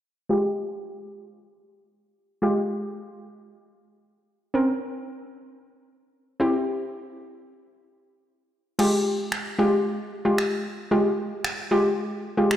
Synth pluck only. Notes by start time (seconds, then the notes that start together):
0.29 G#3 F4 G4
2.42 G#3 F4 G4
4.54 C4 C#4 A#4
6.40 C4 E4 G4
8.79 G#3 F4 G4
9.59 G#3 F4 G4
10.25 G#3 F4 G4
10.91 G#3 F4 G4
11.71 G#3 F4 G4
12.37 G#3 F4 G4